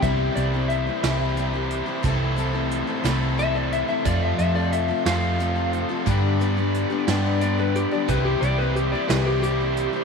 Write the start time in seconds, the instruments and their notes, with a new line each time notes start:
0.02 picked electric bass C2, steel-string acoustic guitar C3 G3 C4 E4 G4, overdriven electric guitar E3, tonewheel organ G4 C5 E5 C6, electric slide guitar E5, kick, closed hi-hat
0.35 picked electric bass C2, steel-string acoustic guitar G3 C4 E4 G4, electric slide guitar D5, closed hi-hat
0.54 steel-string acoustic guitar C4 E4 G4
0.68 electric slide guitar E5, closed hi-hat
0.87 steel-string acoustic guitar C4 E4 G4
1.03 picked electric bass C2, steel-string acoustic guitar C3 G3 C4 E4 G4, overdriven electric guitar E3, snare, closed hi-hat
1.36 steel-string acoustic guitar G3 C4 E4 G4, closed hi-hat
1.53 steel-string acoustic guitar C4 E4 G4
1.70 closed hi-hat
1.86 steel-string acoustic guitar C4 E4 G4
2.03 picked electric bass C2, steel-string acoustic guitar C3 A3 C4 E4 A4, overdriven electric guitar E3, tonewheel organ A4 E5, kick, closed hi-hat
2.36 steel-string acoustic guitar A3 C4 E4 A4, closed hi-hat
2.53 steel-string acoustic guitar C4 E4 A4
2.71 closed hi-hat
2.87 steel-string acoustic guitar C4 E4 A4
3.04 picked electric bass C2, steel-string acoustic guitar C3 A3 C4 E4 A4, overdriven electric guitar E3, snare, closed hi-hat
3.38 steel-string acoustic guitar A3 C4 E4 A4, electric slide guitar E5, closed hi-hat
3.55 steel-string acoustic guitar C4 E4 A4, electric slide guitar D5
3.72 electric slide guitar E5, closed hi-hat
3.88 steel-string acoustic guitar C4 E4 A4, electric slide guitar E5
4.04 overdriven electric guitar F2 C3 A3, picked electric bass F2, steel-string acoustic guitar F3 C4 F4 A4, tonewheel organ F4, electric slide guitar D5, kick, closed hi-hat
4.23 electric slide guitar E5
4.38 picked electric bass F2, steel-string acoustic guitar F3 C4 F4 A4, electric slide guitar E5, closed hi-hat
4.55 steel-string acoustic guitar C4 F4 A4, electric slide guitar D5
4.72 electric slide guitar E5, closed hi-hat
4.88 steel-string acoustic guitar C4 F4 A4
5.06 picked electric bass F2, overdriven electric guitar F2 C3 A3, steel-string acoustic guitar F3 C4 F4 A4, electric slide guitar F5, snare, closed hi-hat
5.39 steel-string acoustic guitar F3 C4 F4 A4, closed hi-hat
5.55 steel-string acoustic guitar C4 F4 A4
5.73 closed hi-hat
5.89 steel-string acoustic guitar C4 F4 A4
6.06 steel-string acoustic guitar G2 D3 G3 B3 D4 G4, picked electric bass G2, tonewheel organ G4 B4 D5 B5, kick, closed hi-hat
6.40 steel-string acoustic guitar G3 B3 D4 G4, closed hi-hat
6.57 steel-string acoustic guitar G3 B3 D4 G4
6.74 closed hi-hat
6.90 steel-string acoustic guitar G3 B3 D4 G4
7.08 picked electric bass G2, steel-string acoustic guitar G2 D3 G3 B3 D4 G4, snare, closed hi-hat
7.41 steel-string acoustic guitar G3 B3 D4 G4, electric slide guitar D5, closed hi-hat
7.58 steel-string acoustic guitar G3 B3 D4 G4, electric slide guitar B4
7.75 electric slide guitar G4, closed hi-hat
7.91 steel-string acoustic guitar G3 B3 D4 G4, electric slide guitar D5
8.08 picked electric bass C2, steel-string acoustic guitar C3 G3 C4 E4 G4, overdriven electric guitar E3, electric slide guitar B4, tonewheel organ C5 E5 C6, kick, closed hi-hat
8.25 electric slide guitar G4
8.41 picked electric bass C2, steel-string acoustic guitar G3 C4 E4 G4, electric slide guitar D5, closed hi-hat
8.58 steel-string acoustic guitar C4 E4 G4, electric slide guitar B4
8.76 electric slide guitar G4, closed hi-hat
8.92 steel-string acoustic guitar C4 E4 G4, electric slide guitar D5
9.09 picked electric bass C2, steel-string acoustic guitar C3 G3 C4 E4 G4, overdriven electric guitar E3, electric slide guitar B4, snare, closed hi-hat
9.26 electric slide guitar G4
9.42 steel-string acoustic guitar G3 C4 E4 G4, electric slide guitar G4, closed hi-hat
9.60 steel-string acoustic guitar C4 E4 G4
9.77 closed hi-hat
9.93 steel-string acoustic guitar C4 E4 G4